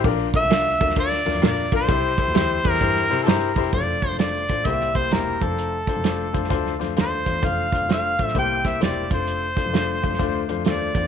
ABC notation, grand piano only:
X:1
M:4/4
L:1/8
Q:"Swing" 1/4=130
K:F
V:1 name="Grand piano"
[DFB] [DFB] [DFB] [DFB] [DFB] [DFB] [DFB] [DFB] | [EGc] [EGc] [EGc] [EGc] [EGc] [EGc] [EGc] [EGc] | [A,DFc] [A,DFc] [A,DFc] [A,DFc] [B,EGc] [B,EGc] [B,EGc] [A,DFc]- | [A,DFc] [A,DFc] [A,DFc] [A,DFc] [A,DFc] [A,DFc] [A,DFc] [A,DFc] |
[A,DFc] [A,DFc] [A,DFc] [A,DFc] [B,EGc] [B,EGc] [B,EGc] [A,DFc]- | [A,DFc] [A,DFc] [A,DFc] [A,DFc] [A,DFc] [A,DFc] [A,DFc] [A,DFc] |]